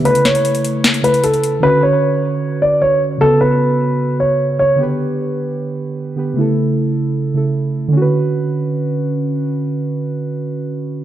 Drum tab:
HH |xxxxxxx-xxxxxxx-|----------------|----------------|----------------|
SD |--o-----o-------|----------------|----------------|----------------|

HH |----------------|----------------|----------------|
SD |----------------|----------------|----------------|